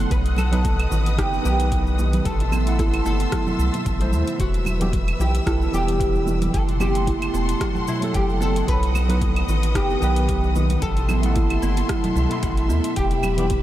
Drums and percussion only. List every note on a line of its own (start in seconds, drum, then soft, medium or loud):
0.11 kick loud
0.11 closed hi-hat medium
0.11 cabasa soft
0.26 closed hi-hat soft
0.26 cabasa soft
0.37 muted conga medium
0.37 low conga medium
0.37 cabasa medium
0.37 claves medium
0.52 closed hi-hat soft
0.52 low conga medium
0.52 cabasa soft
0.64 kick loud
0.64 closed hi-hat medium
0.64 high conga medium
0.64 cabasa soft
0.79 closed hi-hat soft
0.79 cabasa soft
0.79 claves medium
0.92 cabasa medium
1.06 closed hi-hat soft
1.06 muted conga soft
1.06 cabasa soft
1.18 kick loud
1.18 cross-stick medium
1.18 closed hi-hat soft
1.18 cabasa soft
1.33 cabasa soft
1.45 cabasa medium
1.60 closed hi-hat soft
1.60 cabasa soft
1.72 kick loud
1.72 closed hi-hat medium
1.72 cabasa soft
1.87 cabasa soft
1.98 muted conga soft
1.98 high conga medium
1.98 cabasa medium
2.13 closed hi-hat soft
2.13 high conga soft
2.13 low conga medium
2.13 cabasa soft
2.25 kick loud
2.25 closed hi-hat medium
2.25 cabasa soft
2.40 closed hi-hat soft
2.40 cabasa soft
2.52 muted conga medium
2.52 low conga medium
2.52 cabasa medium
2.52 claves medium
2.67 closed hi-hat soft
2.67 cabasa soft
2.79 kick loud
2.79 closed hi-hat soft
2.79 high conga medium
2.79 cabasa soft
2.94 closed hi-hat soft
2.94 cabasa soft
2.94 claves medium
3.05 high conga medium
3.05 cabasa medium
3.19 closed hi-hat soft
3.19 high conga soft
3.19 cabasa soft
3.32 kick loud
3.32 cross-stick medium
3.32 closed hi-hat medium
3.32 cabasa soft
3.47 low conga medium
3.47 cabasa soft
3.59 cabasa medium
3.74 closed hi-hat soft
3.74 high conga medium
3.74 cabasa soft
3.86 kick loud
3.86 closed hi-hat medium
3.86 cabasa soft
4.01 closed hi-hat soft
4.01 cabasa soft
4.13 cabasa medium
4.28 closed hi-hat soft
4.28 cabasa soft
4.39 kick loud
4.39 closed hi-hat medium
4.39 cabasa soft
4.54 closed hi-hat soft
4.54 cabasa soft
4.65 muted conga medium
4.65 low conga medium
4.65 cabasa medium
4.65 claves medium
4.81 closed hi-hat soft
4.81 low conga medium
4.81 cabasa soft
4.92 kick loud
4.92 closed hi-hat soft
4.92 high conga medium
4.92 cabasa soft
5.08 closed hi-hat soft
5.08 cabasa soft
5.08 claves medium
5.20 cabasa medium
5.35 closed hi-hat soft
5.35 muted conga soft
5.35 cabasa soft
5.47 kick loud
5.47 cross-stick medium
5.47 closed hi-hat medium
5.47 cabasa soft
5.62 cabasa soft
5.74 cabasa medium
5.88 closed hi-hat soft
5.88 cabasa soft
6.00 kick loud
6.00 closed hi-hat medium
6.00 cabasa soft
6.15 cabasa soft
6.27 muted conga soft
6.27 high conga medium
6.27 cabasa medium
6.41 closed hi-hat soft
6.41 high conga soft
6.41 low conga medium
6.41 cabasa soft
6.54 kick loud
6.54 closed hi-hat medium
6.54 cabasa soft
6.69 closed hi-hat soft
6.69 cabasa soft
6.80 muted conga medium
6.80 low conga medium
6.80 cabasa medium
6.80 claves medium
6.95 closed hi-hat soft
6.95 cabasa soft
7.07 kick loud
7.07 closed hi-hat medium
7.07 high conga medium
7.07 cabasa soft
7.22 closed hi-hat soft
7.22 cabasa soft
7.22 claves medium
7.34 high conga medium
7.34 cabasa medium
7.49 closed hi-hat soft
7.49 high conga soft
7.49 cabasa soft
7.61 kick loud
7.61 cross-stick medium
7.61 closed hi-hat medium
7.61 cabasa soft
7.75 low conga medium
7.75 cabasa soft
7.88 cabasa medium
8.02 closed hi-hat soft
8.02 high conga medium
8.02 cabasa soft
8.14 kick loud
8.14 closed hi-hat medium
8.14 cabasa soft
8.29 cabasa soft
8.42 cabasa medium
8.56 closed hi-hat soft
8.56 cabasa soft
8.68 kick loud
8.68 closed hi-hat medium
8.68 cabasa soft
8.83 closed hi-hat soft
8.83 cabasa soft
8.94 muted conga medium
8.94 low conga medium
8.94 cabasa medium
8.94 claves medium
9.09 closed hi-hat soft
9.09 low conga medium
9.09 cabasa soft
9.21 kick loud
9.21 closed hi-hat medium
9.21 high conga medium
9.21 cabasa soft
9.36 closed hi-hat soft
9.36 cabasa soft
9.36 claves medium
9.49 cabasa medium
9.63 closed hi-hat soft
9.63 muted conga soft
9.63 cabasa soft
9.75 kick loud
9.75 cross-stick medium
9.75 closed hi-hat medium
9.75 cabasa soft
9.90 cabasa soft
10.02 cabasa medium
10.16 closed hi-hat soft
10.16 cabasa soft
10.29 kick loud
10.29 closed hi-hat medium
10.29 cabasa soft
10.44 cabasa soft
10.55 muted conga soft
10.55 high conga medium
10.55 cabasa medium
10.70 closed hi-hat soft
10.70 high conga soft
10.70 low conga medium
10.70 cabasa soft
10.82 kick loud
10.82 closed hi-hat medium
10.82 cabasa soft
10.97 closed hi-hat soft
10.97 cabasa soft
11.09 muted conga medium
11.09 low conga medium
11.09 cabasa medium
11.09 claves medium
11.23 closed hi-hat soft
11.23 low conga medium
11.23 cabasa soft
11.36 kick loud
11.36 closed hi-hat medium
11.36 high conga medium
11.36 cabasa soft
11.50 closed hi-hat soft
11.50 cabasa soft
11.50 claves medium
11.63 high conga medium
11.63 cabasa medium
11.77 closed hi-hat soft
11.77 muted conga soft
11.77 high conga soft
11.77 cabasa soft
11.89 kick loud
11.89 cross-stick medium
11.89 closed hi-hat medium
11.89 cabasa soft
12.04 closed hi-hat soft
12.04 low conga medium
12.04 cabasa soft
12.16 cabasa medium
12.31 closed hi-hat soft
12.31 high conga medium
12.31 cabasa soft
12.43 kick loud
12.43 closed hi-hat medium
12.43 cabasa soft
12.57 closed hi-hat soft
12.57 cabasa soft
12.70 muted conga soft
12.70 cabasa medium
12.84 closed hi-hat medium
12.84 cabasa soft
12.96 kick loud
12.96 closed hi-hat medium
12.96 cabasa soft
13.11 closed hi-hat soft
13.11 cabasa soft
13.23 muted conga medium
13.23 low conga medium
13.23 cabasa medium
13.23 claves medium
13.38 closed hi-hat soft
13.38 low conga medium
13.38 cabasa soft
13.50 kick loud
13.50 closed hi-hat medium
13.50 high conga medium
13.50 cabasa soft